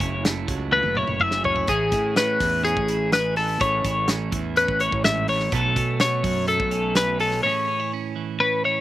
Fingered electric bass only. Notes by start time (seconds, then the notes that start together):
0.00 F#1
0.48 C#2
0.84 F#1
1.07 F#1
1.68 A1
1.92 A2
2.40 E2
2.77 A1
3.61 A1
3.84 A1
4.32 E2
4.68 A1
4.92 A1
5.52 B1
5.76 B2
6.24 F#2
6.59 B1